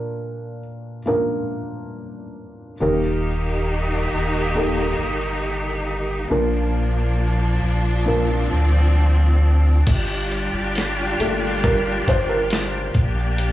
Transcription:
0.00 0.59 A#2 medium
0.00 0.98 A#3 medium
0.00 0.98 D4 medium
0.00 0.98 F4 medium
0.00 0.99 A#4 medium
1.06 2.72 A#3 medium
1.06 2.72 D4 medium
1.06 2.72 F4 medium
1.06 2.73 A#4 medium
2.80 4.08 D#1 medium
2.80 4.08 D#3 medium
2.80 6.27 D#3 medium
2.80 4.46 A#3 medium
2.80 6.27 A#3 medium
2.80 4.46 D#4 medium
2.80 6.27 D#4 medium
2.80 6.27 G4 medium
2.80 4.47 G4 medium
2.80 4.47 A#4 medium
4.12 4.95 D#1 medium
4.55 6.22 A#3 medium
4.55 6.22 D#4 medium
4.55 6.22 G4 medium
4.55 6.22 A4 medium
4.98 6.26 G1 medium
6.30 7.59 A#1 loud
6.30 7.59 A#2 medium
6.30 9.83 F3 medium
6.30 7.98 A#3 medium
6.30 8.05 A#3 medium
6.30 9.83 D4 medium
6.30 7.98 D4 medium
6.30 7.99 F4 medium
6.30 7.99 A#4 medium
7.63 8.48 A#1 medium
8.06 9.77 A#3 medium
8.06 9.85 C4 medium
8.06 9.78 D4 medium
8.06 9.78 F4 medium
8.06 9.78 A#4 medium
8.52 9.83 D2 medium
9.87 10.50 G1 loud
9.87 12.92 G3 medium
9.87 12.92 D4 medium
9.87 12.92 F4 medium
9.87 12.92 G4 medium
9.87 kick medium
9.87 closed hi-hat medium
9.87 crash medium
10.31 closed hi-hat medium
10.54 11.16 G1 medium
10.75 snare medium
10.75 closed hi-hat medium
11.20 12.03 G1 loud
11.20 11.78 A3 soft
11.20 11.78 A#3 soft
11.20 11.79 F4 soft
11.20 11.65 A4 medium
11.20 closed hi-hat medium
11.64 12.09 A#4 medium
11.64 kick medium
11.64 closed hi-hat medium
12.07 12.91 G1 medium
12.07 12.14 C5 medium
12.07 kick medium
12.07 closed hi-hat medium
12.29 12.91 A#4 medium
12.50 snare loud
12.50 closed hi-hat medium
12.94 13.52 A#1 loud
12.94 13.52 A#3 medium
12.94 13.52 D4 medium
12.94 13.52 G4 medium
12.94 kick medium
12.94 closed hi-hat medium
13.38 closed hi-hat medium

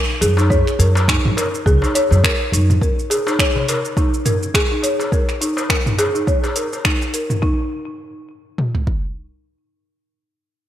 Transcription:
0.00 0.20 A#4 medium
0.21 0.61 F#2 medium
0.21 0.37 G#4 medium
0.21 closed hi-hat medium
0.21 darbuka tek soft
0.21 shaker medium
0.37 0.50 D#4 medium
0.37 darbuka tek medium
0.37 shaker soft
0.50 0.66 C#5 loud
0.50 kick loud
0.50 shaker soft
0.67 finger snap soft
0.67 shaker soft
0.79 1.18 F#2 medium
0.79 0.95 A#4 medium
0.79 closed hi-hat medium
0.79 darbuka ka soft
0.79 shaker medium
0.95 darbuka ka soft
0.95 darbuka tek medium
0.95 shaker soft
1.08 1.36 D#4 medium
1.08 finger snap medium
1.08 kick loud
1.08 shaker soft
1.25 1.34 F#2 medium
1.25 mid tom medium
1.37 1.64 A#4 medium
1.37 closed hi-hat medium
1.37 darbuka tek medium
1.37 shaker medium
1.55 shaker soft
1.66 1.79 C#2 medium
1.66 1.81 G#4 loud
1.66 kick loud
1.66 shaker soft
1.82 1.94 D#4 medium
1.82 darbuka tek medium
1.82 shaker soft
1.94 2.10 C#5 loud
1.94 closed hi-hat medium
1.94 darbuka ka soft
1.94 shaker medium
2.11 2.21 F#2 medium
2.11 darbuka ka medium
2.11 shaker soft
2.24 2.39 A#4 medium
2.24 finger snap loud
2.24 kick loud
2.24 shaker soft
2.40 darbuka ka soft
2.52 2.76 F#2 medium
2.52 2.80 D#4 medium
2.52 closed hi-hat medium
2.52 shaker medium
2.70 mid tom medium
2.70 shaker soft
2.81 3.09 A#4 medium
2.81 kick loud
2.81 shaker soft
2.99 shaker soft
3.10 3.26 G#4 medium
3.10 closed hi-hat medium
3.10 darbuka ka medium
3.10 shaker medium
3.27 3.38 D#4 medium
3.27 darbuka tek medium
3.27 shaker soft
3.39 3.55 C#5 medium
3.39 finger snap medium
3.39 kick medium
3.39 shaker soft
3.56 darbuka dum medium
3.69 3.84 A#4 medium
3.69 closed hi-hat medium
3.69 darbuka tek medium
3.69 shaker medium
3.85 shaker soft
3.97 4.24 D#4 medium
3.97 kick loud
3.97 darbuka ka medium
3.97 shaker soft
4.14 shaker soft
4.25 4.53 A#4 medium
4.25 closed hi-hat medium
4.25 mid tom medium
4.25 darbuka ka soft
4.25 shaker medium
4.43 shaker soft
4.54 4.70 G#4 medium
4.54 finger snap loud
4.54 kick loud
4.54 shaker soft
4.71 4.83 D#4 medium
4.82 4.99 C#5 medium
4.82 closed hi-hat medium
4.82 darbuka tek soft
4.82 shaker medium
5.00 darbuka tek medium
5.00 shaker soft
5.12 5.28 A#4 medium
5.12 kick loud
5.12 shaker soft
5.29 finger snap soft
5.29 shaker soft
5.41 5.68 D#4 medium
5.41 closed hi-hat medium
5.41 darbuka ka soft
5.41 shaker medium
5.57 darbuka ka soft
5.57 darbuka tek medium
5.57 shaker soft
5.70 5.97 A#4 medium
5.70 finger snap medium
5.70 kick medium
5.70 shaker soft
5.86 mid tom medium
5.86 shaker soft
5.99 6.14 G#4 loud
5.99 closed hi-hat medium
5.99 darbuka tek medium
5.99 shaker medium
6.15 6.26 D#4 medium
6.15 shaker soft
6.27 6.43 C#5 medium
6.27 kick loud
6.27 shaker soft
6.44 darbuka tek medium
6.44 shaker soft
6.56 6.71 A#4 medium
6.56 closed hi-hat medium
6.56 darbuka ka soft
6.56 shaker medium
6.73 darbuka ka medium
6.73 shaker soft
6.85 7.13 D#4 medium
6.85 finger snap medium
6.85 kick loud
6.85 shaker soft
7.02 darbuka ka soft
7.02 shaker soft
7.14 7.41 A#4 medium
7.14 closed hi-hat medium
7.14 shaker medium
7.30 mid tom medium
7.30 shaker soft
7.42 7.69 D#4 medium
7.42 kick medium
8.58 mid tom medium
8.75 floor tom medium
8.87 kick medium

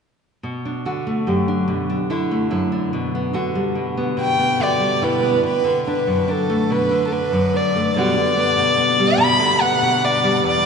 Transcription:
0.43 0.85 B2 soft
0.65 1.48 D4 soft
0.85 2.09 D3 soft
0.85 1.27 F#4 soft
1.07 2.30 A3 soft
1.27 1.69 F#2 soft
1.27 2.10 G4 soft
1.48 1.89 D4 soft
1.68 2.10 B2 soft
1.90 2.72 D4 soft
2.10 3.32 D3 soft
2.10 2.50 E4 soft
2.31 2.89 A3 soft
2.51 2.88 F#2 soft
2.51 2.93 E4 soft
2.72 3.15 D4 soft
2.93 3.35 B2 medium
3.15 3.96 B3 soft
3.33 4.58 D3 soft
3.33 3.76 F#4 soft
3.55 4.79 G3 soft
3.75 4.16 B2 soft
3.97 4.38 B3 soft
4.17 4.59 B2 medium
4.21 4.64 G5 medium
4.39 5.22 B3 soft
4.59 5.63 D3 medium
4.59 5.02 F#4 soft
4.59 5.06 D5 medium
4.80 5.43 G3 soft
5.02 5.39 B2 soft
5.02 5.44 E4 soft
5.02 5.45 B4 medium
5.23 5.87 B3 soft
5.43 5.65 B2 medium
5.43 5.84 B4 medium
5.64 6.90 D3 soft
5.87 6.28 D4 soft
5.87 6.33 B4 medium
6.07 6.70 F#2 soft
6.28 7.11 D4 soft
6.28 6.73 A4 medium
6.50 7.74 A3 soft
6.70 6.91 B2 medium
6.70 7.06 B4 medium
6.91 7.95 D3 soft
7.07 7.14 A4 soft
7.12 7.52 D4 soft
7.12 7.58 B4 medium
7.32 7.90 F#2 soft
7.54 7.90 D4 soft
7.54 7.96 D5 medium
7.75 7.90 A3 soft
7.95 8.16 B2 medium
7.95 8.15 D3 soft
7.95 8.99 G3 soft
7.95 8.37 B3 soft
7.95 10.41 F#4 medium
7.95 9.23 D5 medium
8.16 9.38 D3 soft
8.37 8.78 B3 soft
8.57 9.17 B2 soft
8.78 9.61 B3 soft
8.99 10.23 G3 soft
9.18 9.39 B2 medium
9.18 9.63 B5 medium
9.39 10.43 D3 medium
9.61 10.03 B3 soft
9.61 10.06 F#5 medium
9.82 10.39 B2 soft
10.05 10.66 B3 soft
10.05 10.45 D5 medium
10.24 10.66 G3 soft
10.44 10.66 E2 medium
10.44 10.66 D5 medium

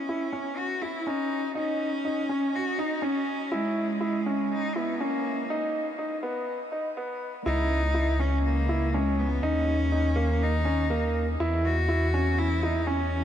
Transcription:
0.00 0.59 C#4 medium
0.09 0.25 E4 medium
0.33 0.66 C#4 medium
0.58 0.83 F#4 loud
0.82 1.09 E4 medium
0.82 0.99 E4 medium
1.07 1.40 C#4 medium
1.07 1.56 D#4 loud
1.55 2.57 C#4 loud
1.55 1.89 D#4 medium
2.05 2.22 D#4 medium
2.29 2.63 C#4 medium
2.56 2.81 F#4 loud
2.78 2.95 D#4 medium
2.78 3.05 D#4 medium
3.02 3.36 C#4 medium
3.02 3.55 C#4 loud
3.52 4.54 G#3 loud
3.52 3.85 E4 medium
4.01 4.18 E4 medium
4.26 4.60 C#4 medium
4.52 4.79 D#4 loud
4.76 5.03 B3 medium
4.76 4.92 E4 medium
5.01 5.50 A#3 medium
5.01 5.34 C#4 medium
5.50 5.83 D#4 loud
5.99 6.15 D#4 medium
6.23 6.56 B3 medium
6.72 6.89 D#4 medium
6.97 7.30 B3 medium
7.46 9.41 C#2 loud
7.46 8.22 D#4 loud
7.46 7.79 E4 medium
7.94 8.11 E4 medium
8.20 8.53 C#4 medium
8.20 8.43 C#4 loud
8.44 8.95 A#3 loud
8.69 8.86 E4 medium
8.93 9.21 G#3 loud
8.93 9.27 C#4 medium
9.19 9.45 B3 loud
9.43 11.37 D#2 medium
9.43 10.44 C#4 loud
9.43 9.76 D#4 loud
9.92 10.09 D#4 medium
10.16 10.49 A#3 medium
10.43 11.16 D#4 loud
10.65 10.82 C#4 medium
10.90 11.24 A#3 medium
11.40 13.24 E2 medium
11.40 11.73 E4 loud
11.65 12.40 F#4 loud
11.89 12.05 E4 medium
12.14 12.47 C#4 medium
12.39 12.66 E4 loud
12.63 12.89 D#4 loud
12.63 12.80 E4 medium
12.87 13.20 C#4 medium
12.87 13.24 C#4 loud

